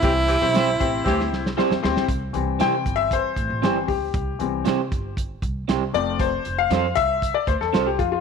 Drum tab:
HH |x-x-x-x---------|x-x-x-x-x-x-x-o-|x-x-x-x-x-x-x-x-|x-x-x-x-x-x-x-x-|
SD |----o---oooooooo|----o-------o---|----o-------o---|----o------oo---|
BD |o-----o-o-------|o-----o-o-o---o-|o-----o-o-o-----|o-----o-o-o---o-|